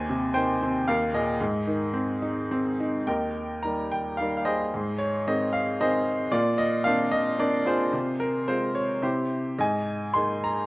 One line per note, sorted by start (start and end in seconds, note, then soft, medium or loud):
0.00 0.85 D#2 medium
0.00 0.32 C5 medium
0.00 0.37 G#5 medium
0.10 0.85 C3 medium
0.34 0.86 D#3 soft
0.34 0.83 C5 medium
0.34 0.88 G5 medium
0.62 0.87 C4 soft
0.88 1.39 D#2 medium
0.88 1.12 A#4 medium
0.88 1.12 F5 medium
1.13 1.39 A#2 medium
1.13 2.48 G#4 medium
1.13 2.47 D#5 medium
1.41 3.04 G#2 medium
1.67 2.77 D#3 medium
1.94 2.50 C4 medium
2.22 2.79 D#4 medium
2.51 3.07 C4 medium
2.80 3.07 D#4 medium
3.07 4.69 D#2 soft
3.07 3.88 A#4 soft
3.07 3.88 D#5 soft
3.07 3.60 G5 medium
3.63 4.18 D#3 soft
3.63 4.18 G3 soft
3.63 4.19 A#3 soft
3.63 3.92 A#5 medium
3.92 4.20 G5 medium
4.17 4.72 D#3 soft
4.17 4.72 G3 soft
4.17 4.72 A#3 soft
4.17 4.35 F5 medium
4.37 4.45 F5 soft
4.45 5.21 G#4 medium
4.45 5.21 C5 soft
4.45 4.95 D#5 medium
4.74 6.28 G#2 medium
4.98 5.26 C#5 medium
5.27 5.78 D#3 soft
5.27 5.78 G#3 soft
5.27 5.78 C4 soft
5.27 5.54 D#5 medium
5.53 5.80 F5 medium
5.80 6.31 D#3 soft
5.80 6.31 G#3 soft
5.80 6.31 C4 soft
5.80 6.29 G#4 medium
5.80 6.29 C5 medium
5.80 6.17 D#5 medium
6.32 7.88 A#2 medium
6.32 7.08 F4 medium
6.32 6.59 D5 medium
6.58 6.86 D#5 medium
6.84 7.37 A#3 soft
6.84 7.38 C4 soft
6.84 7.38 D4 soft
6.84 7.12 F5 medium
7.12 7.39 D#5 medium
7.39 7.91 A#3 soft
7.39 7.91 C4 soft
7.39 7.91 D4 medium
7.39 7.64 D5 medium
7.66 8.43 F4 medium
7.66 8.43 G#4 soft
7.66 8.22 C5 medium
7.93 8.98 C3 medium
8.20 8.45 A#4 medium
8.48 9.01 G#3 soft
8.48 9.01 C4 soft
8.48 9.01 F4 soft
8.48 8.75 C5 medium
8.75 9.03 C#5 medium
9.02 9.56 C3 soft
9.02 9.54 E4 soft
9.02 9.54 G4 soft
9.02 9.41 C5 medium
9.59 10.66 G#2 medium
9.59 10.39 D#5 medium
9.59 10.12 G#5 medium
10.14 10.66 G#3 soft
10.14 10.66 A#3 soft
10.14 10.66 D#4 soft
10.14 10.40 C6 medium
10.44 10.66 A#5 medium